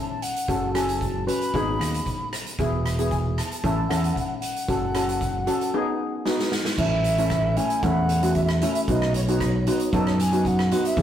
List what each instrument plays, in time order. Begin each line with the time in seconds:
Already playing: steel pan C#4 E4 A4
0.01 ocarina A5
0.08 ocarina A5
0.22 ocarina F#5, closed hi-hat
0.36 closed hi-hat
0.48 fingered electric bass F#1, steel pan C#4 F#4 A4, kick, closed hi-hat
0.74 steel pan C#4 F#4 A4, ocarina G#5, cross-stick, closed hi-hat
0.89 closed hi-hat
1.00 ocarina A5, kick, closed hi-hat
1.27 steel pan C#4 F#4 B4, ocarina B5, closed hi-hat
1.42 closed hi-hat
1.54 fingered electric bass G#1, steel pan B3 D#4 G#4, kick, closed hi-hat
1.79 fingered electric bass D#2, cross-stick, closed hi-hat
1.94 closed hi-hat
2.06 kick, closed hi-hat
2.33 cross-stick, closed hi-hat
2.46 closed hi-hat
2.59 fingered electric bass E1, steel pan B3 E4 G#4, kick, closed hi-hat
2.86 cross-stick, closed hi-hat
2.99 steel pan B3 E4 G#4, closed hi-hat
3.11 ocarina G#5, kick, closed hi-hat
3.37 ocarina A5, cross-stick, closed hi-hat
3.45 ocarina A5
3.52 ocarina A5, closed hi-hat
3.59 ocarina A5
3.64 fingered electric bass A1, steel pan C#4 E4 A4, ocarina A5, kick, closed hi-hat
3.75 ocarina A5
3.89 fingered electric bass E2, steel pan C#4 E4 A4, ocarina F#5, cross-stick, closed hi-hat
3.96 ocarina F#5
4.04 ocarina F#5, closed hi-hat
4.12 ocarina F#5
4.16 ocarina F#5, kick, closed hi-hat
4.27 ocarina F#5
4.40 ocarina F#5, closed hi-hat
4.56 closed hi-hat
4.68 fingered electric bass F#1, steel pan C#4 F#4 A4, kick, closed hi-hat
4.95 steel pan C#4 F#4 A4, cross-stick, closed hi-hat
5.09 closed hi-hat
5.21 kick, closed hi-hat
5.47 steel pan C#4 F#4 A4, closed hi-hat
5.61 closed hi-hat
5.74 steel pan B3 D#4 G#4
6.26 steel pan B3 D#4 F#4, snare
6.39 snare
6.52 snare
6.65 snare
6.78 fingered electric bass A1, steel pan A3 C#4 E4, ocarina E5, kick, crash
7.04 closed hi-hat
7.18 steel pan A3 C#4 E4, closed hi-hat
7.30 kick, cross-stick, closed hi-hat
7.57 steel pan A3 C#4 E4, ocarina G#5, closed hi-hat
7.70 closed hi-hat
7.83 fingered electric bass E2, steel pan A3 C#4 E4, ocarina F#5, kick, closed hi-hat
8.09 closed hi-hat
8.23 steel pan A3 C#4 F#4, closed hi-hat
8.35 ocarina E5, kick, closed hi-hat
8.44 ocarina E5
8.49 ocarina E5, cross-stick
8.60 steel pan A3 C#4 E4, ocarina E5, closed hi-hat
8.68 ocarina E5
8.74 ocarina E5, closed hi-hat
8.88 fingered electric bass B1, steel pan B3 D#4 F#4, ocarina D#5, kick, closed hi-hat
9.02 cross-stick
9.14 ocarina C#5, closed hi-hat
9.24 ocarina C#5
9.28 steel pan B3 D#4 F#4, ocarina C#5, closed hi-hat
9.39 ocarina C#5, kick, cross-stick, closed hi-hat
9.47 ocarina C#5
9.54 ocarina C#5
9.60 ocarina C#5
9.67 steel pan B3 D#4 F#4, ocarina C#5, closed hi-hat
9.77 ocarina C#5, closed hi-hat
9.84 ocarina C#5
9.92 fingered electric bass F#2, steel pan B3 D#4 A4, ocarina C#5, kick, closed hi-hat
10.00 ocarina C#5
10.06 ocarina C#5, cross-stick
10.20 ocarina G#5, closed hi-hat
10.33 steel pan B3 D#4 F#4, closed hi-hat
10.45 ocarina F#5, kick, closed hi-hat
10.59 cross-stick
10.71 steel pan B3 D#4 F#4, closed hi-hat
10.85 ocarina E5, closed hi-hat
10.97 fingered electric bass E2, steel pan B3 E4 G#4, kick, closed hi-hat